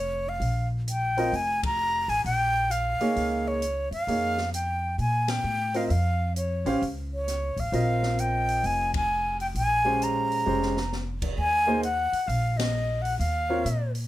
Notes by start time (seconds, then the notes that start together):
Already playing: F1 C#5
0.29 F5
0.40 A#1, open hi-hat
0.88 G5, closed hi-hat
1.17 C4 F4 A#4 D#5, open hi-hat
1.33 F1 G#5, open hi-hat
1.63 A#5, kick, ride
2.08 A1 G#5, open hi-hat
2.25 A#1 G5, open hi-hat
2.71 F5, closed hi-hat
3.00 A#3 D#4 G#4 C#5, muted upright bass stroke, open hi-hat
3.16 C#2, open hi-hat
3.48 C#5
3.62 closed hi-hat
3.91 F2 F5, open hi-hat
4.07 F2 A#3 D#4 G#4 C#5, open hi-hat
4.38 snare
4.54 G5, closed hi-hat
4.98 A#2 G#5, open hi-hat
5.28 G5, snare, ride
5.44 A2
5.74 C4 F4 A#4 D#5 F5, open hi-hat
5.87 F2 E5 F5, open hi-hat
6.36 C#5, closed hi-hat
6.65 A1 C#4 G4 C5 F5, open hi-hat
6.82 C#2, open hi-hat
7.14 C#5
7.28 snare, closed hi-hat
7.56 A1 F5, kick, open hi-hat
7.72 A#1 C4 F4 A#4 D#5, open hi-hat
8.03 snare
8.19 G5, closed hi-hat
8.49 open hi-hat
8.63 F1 G#5, open hi-hat
8.94 G#5, kick, ride
9.40 G5, open hi-hat
9.55 A#1 G#5, open hi-hat
9.85 G#3 C#4 G4 C5
10.02 A#5, closed hi-hat
10.32 open hi-hat
10.46 F1 G#3 C#4 G4 C5
10.62 snare
10.77 snare
10.92 snare
11.22 kick, crash
11.38 D#2 G#5
11.67 A#3 D#4 G#4 C5
11.83 F#5, closed hi-hat
12.13 muted upright bass stroke, open hi-hat
12.27 A#1 F5, open hi-hat
12.57 D#5, snare, ride
13.02 F#5, open hi-hat
13.19 D#2 F5, open hi-hat
13.49 C4 F4 A#4 C#5
13.65 A#2, closed hi-hat
13.95 open hi-hat